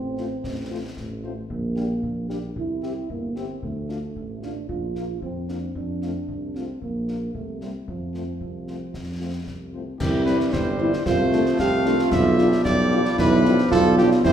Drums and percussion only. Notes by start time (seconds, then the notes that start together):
0.17 snare
0.44 concert bass drum, snare
0.97 concert bass drum, snare
1.50 concert bass drum
1.77 snare
2.03 concert bass drum
2.30 snare
2.56 concert bass drum
2.83 snare
3.10 concert bass drum
3.36 snare
3.63 concert bass drum
3.89 snare
4.16 concert bass drum
4.43 snare
4.69 concert bass drum
4.96 snare
5.22 concert bass drum
5.49 snare
5.75 concert bass drum
6.02 snare
6.28 concert bass drum
6.55 snare
6.82 concert bass drum
7.08 snare
7.35 concert bass drum
7.61 snare
7.88 concert bass drum
8.14 snare
8.41 concert bass drum
8.68 snare
8.94 concert bass drum, snare
9.47 concert bass drum, snare
10.00 concert bass drum, snare, crash
10.27 snare
10.40 snare
10.53 concert bass drum, snare
10.93 snare
11.06 concert bass drum, snare
11.33 snare
11.46 snare
11.59 concert bass drum, snare
11.85 snare
11.99 snare
12.12 concert bass drum, snare, crash
12.38 snare
12.52 snare
12.65 concert bass drum, snare
13.05 snare
13.18 concert bass drum, snare
13.45 snare
13.59 snare
13.72 concert bass drum, snare
13.98 snare
14.12 snare
14.25 concert bass drum, snare, crash